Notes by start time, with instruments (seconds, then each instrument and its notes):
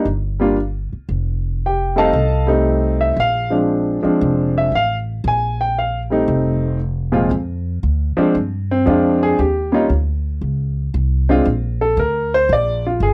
0.05 upright bass G1
0.40 grand piano G3 A#3 D4 F4
0.93 muted upright bass stroke
1.09 upright bass F1
1.66 grand piano G4 G5
1.96 grand piano G3 A3 C4 D#4 A4 D#5 F5 A5
2.13 upright bass C2
2.47 grand piano G3 A3 C4 D#4
3.01 grand piano E5
3.16 upright bass A#1, grand piano F5
3.50 grand piano F3 G#3 C4 D4
4.03 grand piano F3 G#3 C4 D4, muted upright bass stroke
4.21 upright bass F1
4.58 grand piano E5
4.72 upright bass A1, grand piano F5
5.24 upright bass A#1, grand piano G#5
5.61 grand piano G5
5.78 grand piano F5
6.10 grand piano G3 A3 C4 D#4
6.28 upright bass F1
7.12 grand piano A#2 F3 G#3 C4 F4
7.31 upright bass F2
7.83 upright bass D2
8.17 grand piano F3 G#3 C4 D4, muted upright bass stroke
8.35 upright bass G2
8.71 grand piano C4
8.86 upright bass F2, grand piano F3 G#3 C4 D4 F4
9.23 grand piano G#4
9.39 upright bass D#2, grand piano G4
9.72 grand piano G3 A#3 C#4 D#4 F4
9.90 upright bass D2
10.41 upright bass C#2
10.94 upright bass C2
11.29 grand piano G#3 C4 D4 F4
11.45 upright bass A#1
11.81 grand piano A4
11.97 upright bass D2, grand piano A#4
12.34 grand piano C5
12.49 upright bass A#1, grand piano D5
12.87 grand piano F4
13.00 upright bass G1, grand piano G#4